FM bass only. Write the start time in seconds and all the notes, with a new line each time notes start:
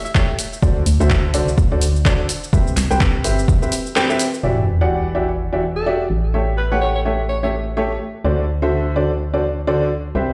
0.63 D2
0.86 D2
1.00 D2
1.34 C2
1.58 D2
2.53 C2
2.77 C2
2.91 C2
3.24 G1
4.43 E1
6.10 A1
8.24 D2
10.15 C2